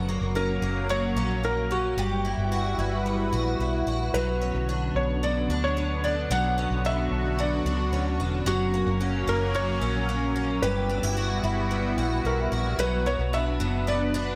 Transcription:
0.00 0.19 F#1 medium
0.00 0.89 F#3 medium
0.00 1.95 F#3 medium
0.00 1.95 A#3 medium
0.09 0.61 A#3 medium
0.21 0.60 F#1 medium
0.35 1.15 C#4 medium
0.35 0.86 A#4 medium
0.62 1.13 F#1 medium
0.62 1.42 A#3 medium
0.89 1.97 F#3 medium
0.89 1.45 C#5 medium
1.16 1.93 A#1 medium
1.16 1.69 C#4 medium
1.43 2.03 A#3 soft
1.43 1.72 A#4 medium
1.71 2.03 C#4 medium
1.71 3.83 F#4 medium
1.96 2.36 G1 medium
1.96 4.11 G3 medium
1.96 4.14 G3 medium
1.96 4.11 E4 medium
1.96 4.11 F#4 medium
1.96 4.11 B4 medium
2.25 2.77 E4 soft
2.37 2.76 G1 medium
2.52 3.32 F#4 medium
2.78 3.30 G1 medium
2.78 3.59 E4 medium
3.06 4.41 B3 medium
3.32 3.58 A#1 medium
3.32 3.86 F#4 medium
3.59 3.85 B1 medium
3.59 4.19 E4 soft
3.87 4.12 A#1 medium
3.87 7.37 F#4 medium
4.14 4.52 B1 medium
4.14 8.42 D3 medium
4.14 5.23 F#3 medium
4.14 8.42 B3 medium
4.14 4.97 B4 medium
4.41 5.53 C#4 soft
4.54 4.93 B1 medium
4.69 5.49 D4 medium
4.95 5.46 B1 medium
4.95 5.23 C#5 medium
5.23 6.30 F#3 medium
5.23 5.64 D5 medium
5.49 6.26 D2 medium
5.49 6.03 D4 medium
5.64 6.05 C#5 medium
5.77 6.57 C#4 soft
6.04 6.84 D4 medium
6.04 6.31 D5 medium
6.30 6.68 B1 medium
6.30 7.38 F#3 medium
6.30 8.44 F#4 medium
6.30 6.86 F#5 medium
6.58 7.69 C#4 medium
6.70 7.09 B1 medium
6.85 7.65 D4 medium
6.85 7.41 E5 medium
7.11 7.62 B1 medium
7.38 8.46 F#3 medium
7.38 8.16 D5 medium
7.65 7.91 C#2 medium
7.65 8.19 D4 medium
7.92 8.18 D2 medium
7.92 8.73 C#4 medium
8.19 8.45 E1 medium
8.19 8.52 D4 medium
8.46 8.85 F#1 medium
8.46 9.54 F#3 medium
8.46 10.60 F#3 medium
8.46 10.60 A#3 medium
8.46 10.60 C#4 medium
8.46 9.30 F#4 medium
8.74 9.26 A#3 medium
8.86 9.25 F#1 medium
9.01 9.80 C#4 medium
9.27 9.79 F#1 loud
9.27 10.08 A#3 medium
9.27 9.56 A#4 medium
9.54 10.62 F#3 medium
9.54 10.66 C#5 medium
9.81 10.58 A#1 medium
9.81 10.34 C#4 medium
10.09 10.68 A#3 medium
10.36 10.68 C#4 medium
10.62 11.01 G1 medium
10.62 12.76 G3 medium
10.62 12.78 G3 medium
10.62 12.76 B3 medium
10.62 12.76 E4 medium
10.62 12.76 F#4 medium
10.62 12.21 B4 medium
10.89 11.03 D4 soft
11.03 11.41 G1 medium
11.03 11.42 E4 soft
11.17 11.98 F#4 medium
11.43 11.95 G1 medium
11.43 12.24 E4 medium
11.71 13.87 B3 medium
11.97 12.23 A#1 medium
11.97 12.51 F#4 medium
12.24 12.50 B1 medium
12.24 12.84 E4 soft
12.24 12.81 A#4 medium
12.52 12.77 A#1 medium
12.52 14.35 F#4 medium
12.78 13.17 B1 medium
12.78 13.06 F#3 medium
12.78 14.35 B3 medium
12.78 14.35 B4 medium
12.78 13.07 B4 medium
13.06 13.60 F#3 medium
13.06 13.34 C#5 medium
13.19 13.58 B1 medium
13.33 14.13 D4 medium
13.33 13.89 E5 medium
13.60 14.35 F#1 medium
13.60 14.35 F#3 medium
13.87 14.00 B3 medium
13.87 14.35 D5 medium
14.14 14.35 D4 medium

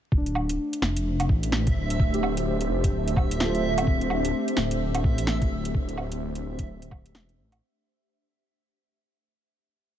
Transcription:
0.11 0.58 D1 medium
0.11 7.62 A3 medium
0.11 7.63 E5 medium
0.11 kick loud
0.17 7.61 D4 medium
0.17 1.66 D4 medium
0.26 closed hi-hat soft
0.35 low woodblock soft
0.40 7.62 C5 medium
0.49 7.62 G4 medium
0.49 closed hi-hat medium
0.73 closed hi-hat soft
0.82 1.31 F1 medium
0.82 snare medium
0.97 7.62 E5 medium
0.97 closed hi-hat medium
1.20 closed hi-hat soft
1.20 low woodblock soft
1.29 1.75 A1 medium
1.29 kick loud
1.43 closed hi-hat medium
1.52 snare medium
1.67 kick loud
1.67 closed hi-hat soft
1.76 2.68 D1 medium
1.90 closed hi-hat medium
2.00 kick loud
2.14 3.59 G4 medium
2.14 closed hi-hat soft
2.23 low woodblock soft
2.37 closed hi-hat medium
2.61 closed hi-hat soft
2.69 2.91 F1 medium
2.84 kick medium
2.84 closed hi-hat medium
2.92 3.38 D1 medium
3.08 closed hi-hat soft
3.17 kick loud
3.17 low woodblock soft
3.31 closed hi-hat medium
3.40 3.85 D1 medium
3.40 4.06 F4 medium
3.40 snare loud
3.45 4.09 A4 medium
3.50 4.11 C5 medium
3.55 closed hi-hat soft
3.78 closed hi-hat medium
3.78 low woodblock medium
3.82 4.08 C4 medium
3.87 4.32 D1 loud
3.87 kick loud
4.01 closed hi-hat soft
4.10 low woodblock soft
4.25 closed hi-hat medium
4.48 closed hi-hat soft
4.57 5.05 D1 medium
4.57 snare loud
4.71 closed hi-hat medium
4.95 closed hi-hat soft
4.95 low woodblock soft
5.03 5.50 A1 medium
5.03 6.52 C4 medium
5.03 kick loud
5.18 closed hi-hat medium
5.27 snare loud
5.34 6.82 A3 medium
5.42 kick loud
5.42 closed hi-hat soft
5.51 6.43 D1 medium
5.65 closed hi-hat medium
5.74 kick loud
5.89 closed hi-hat soft
5.97 low woodblock soft
6.12 closed hi-hat medium
6.35 closed hi-hat soft
6.45 6.67 D1 medium
6.59 kick medium
6.59 closed hi-hat medium
6.68 7.14 D1 medium
6.82 closed hi-hat soft
6.91 kick loud
6.91 low woodblock soft
7.06 closed hi-hat medium
7.15 7.40 E1 medium
7.15 snare loud
7.29 closed hi-hat soft
7.38 7.60 A1 medium
7.52 closed hi-hat medium
7.52 low woodblock medium

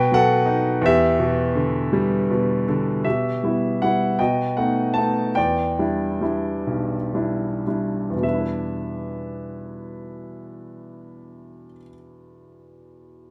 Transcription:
0.00 0.79 B2 medium
0.00 0.11 B4 medium
0.00 0.14 G5 medium
0.12 0.80 F#3 medium
0.12 0.79 A4 medium
0.12 0.85 F#5 loud
0.46 0.81 D#4 medium
0.81 3.01 E2 medium
0.86 2.65 G4 medium
0.86 2.65 E5 medium
1.19 2.29 B2 medium
1.55 2.67 D3 medium
1.93 3.02 G3 medium
2.31 3.03 B2 medium
2.68 3.05 D3 medium
3.04 4.16 B2 soft
3.04 4.15 G4 soft
3.04 3.83 E5 medium
3.44 3.82 G3 soft
3.44 3.82 B3 soft
3.44 3.83 E4 soft
3.82 4.12 G3 soft
3.82 4.13 B3 soft
3.82 4.13 E4 soft
3.82 4.20 F#5 medium
4.19 5.34 B2 soft
4.19 5.33 D#5 soft
4.19 4.58 G5 medium
4.57 4.96 A3 soft
4.57 4.97 B3 soft
4.57 4.97 D#4 soft
4.57 4.97 F#5 medium
4.94 5.37 A5 medium
4.98 5.29 A3 soft
4.98 5.30 B3 soft
4.98 5.30 D#4 soft
5.35 8.09 E2 medium
5.35 7.63 D5 soft
5.35 7.62 G5 medium
5.79 6.20 G3 soft
5.79 6.21 D4 soft
5.79 6.21 E4 soft
6.21 6.96 G3 soft
6.21 6.96 D4 soft
6.21 6.97 E4 soft
6.67 8.20 B1 soft
7.14 7.66 G3 soft
7.14 7.66 D4 soft
7.14 7.66 E4 soft
7.67 8.13 G3 soft
7.67 8.13 D4 soft
7.67 8.13 E4 soft
8.10 11.64 E2 soft
8.16 11.71 B2 soft
8.22 11.77 G3 soft
8.22 11.78 E5 medium
8.28 11.83 D4 soft
8.34 11.89 E4 soft
8.41 11.95 B4 soft

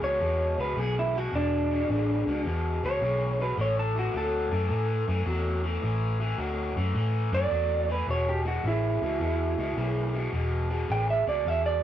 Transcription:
0.02 0.19 C#2 medium
0.02 0.18 E2 medium
0.02 0.19 B2 medium
0.02 0.57 C#5 loud
0.20 0.54 E2 medium
0.20 0.55 B2 medium
0.58 0.75 C#2 medium
0.58 0.75 E2 medium
0.58 0.75 B2 medium
0.58 0.80 B4 medium
0.76 1.27 B1 medium
0.76 1.10 E2 medium
0.76 1.11 C#3 loud
0.76 0.96 G#4 medium
0.99 1.18 E4 medium
1.14 1.31 E2 medium
1.14 1.31 B2 medium
1.14 1.34 F#4 medium
1.32 1.83 E1 medium
1.32 1.67 E2 medium
1.32 1.67 B2 medium
1.32 2.43 D4 loud
1.70 1.87 E2 medium
1.70 1.87 B2 medium
1.89 2.23 A1 medium
1.89 2.23 E2 medium
1.89 2.23 C#3 medium
2.27 2.43 C#2 medium
2.27 2.44 E2 medium
2.27 2.44 B2 medium
2.45 2.79 E2 medium
2.45 2.80 B2 medium
2.83 3.00 C#2 medium
2.83 3.00 E2 medium
2.83 3.00 B2 medium
2.83 3.39 C#5 medium
3.01 3.51 B1 medium
3.01 3.36 E2 medium
3.01 3.36 C#3 medium
3.39 3.56 E2 medium
3.39 3.56 B2 medium
3.39 3.59 B4 medium
3.57 4.08 A1 medium
3.57 3.92 A2 medium
3.57 3.92 E3 medium
3.57 3.78 C#5 medium
3.79 3.96 A4 medium
3.95 4.12 A2 medium
3.95 4.12 E3 medium
3.95 4.15 F#4 medium
4.13 4.48 D2 medium
4.13 4.48 A2 medium
4.13 4.48 F#3 medium
4.13 5.80 A4 loud
4.51 4.68 F#2 medium
4.51 4.68 A2 medium
4.51 4.68 E3 medium
4.69 5.04 A2 medium
4.69 5.04 E3 medium
5.08 5.24 F#2 medium
5.08 5.24 A2 medium
5.08 5.25 E3 medium
5.26 5.76 E2 loud
5.26 5.60 A2 medium
5.26 5.60 F#3 loud
5.64 5.80 A2 medium
5.64 5.81 E3 medium
5.82 6.33 A1 loud
5.82 6.17 A2 medium
5.82 6.17 E3 loud
6.20 6.37 A2 medium
6.20 6.37 E3 medium
6.38 6.72 D2 medium
6.38 6.73 A2 medium
6.38 6.73 F#3 medium
6.76 6.93 F#2 medium
6.76 6.93 A2 medium
6.76 6.93 E3 medium
6.94 7.29 A2 medium
6.94 7.28 A2 medium
6.94 7.29 E3 medium
7.32 7.49 F#2 medium
7.32 7.49 A2 medium
7.32 7.50 E3 medium
7.32 7.88 D5 loud
7.50 8.01 E2 medium
7.50 7.85 A2 medium
7.50 7.85 F#3 medium
7.88 8.05 A2 medium
7.88 8.06 E3 medium
7.88 8.09 B4 medium
8.07 8.57 E1 medium
8.07 8.42 E2 medium
8.07 8.42 B2 medium
8.07 8.27 C#5 medium
8.29 8.46 G4 loud
8.45 8.62 E2 medium
8.45 8.62 B2 medium
8.45 8.65 F#4 medium
8.64 8.98 A1 medium
8.64 8.98 E2 medium
8.64 8.98 C#3 loud
8.64 10.31 E4 loud
9.02 9.18 C#2 medium
9.02 9.18 E2 medium
9.02 9.19 B2 loud
9.20 9.54 E2 medium
9.20 9.55 B2 medium
9.58 9.74 C#2 medium
9.58 9.75 E2 medium
9.58 9.75 B2 medium
9.76 10.27 B1 medium
9.76 10.11 E2 medium
9.76 10.11 C#3 medium
10.14 10.31 E2 medium
10.14 10.31 B2 medium
10.32 10.83 E1 medium
10.32 10.67 E2 medium
10.32 10.67 B2 loud
10.70 10.87 E2 medium
10.70 10.87 B2 medium
10.88 11.23 A1 medium
10.88 11.23 E2 medium
10.88 11.23 C#3 medium
10.88 11.09 G5 loud
11.10 11.27 E5 medium
11.26 11.43 C#2 medium
11.26 11.43 E2 medium
11.26 11.44 B2 medium
11.26 11.48 D5 medium
11.45 11.79 E2 medium
11.45 11.80 E2 medium
11.45 11.80 B2 medium
11.45 11.65 E5 medium
11.66 11.83 D5 medium

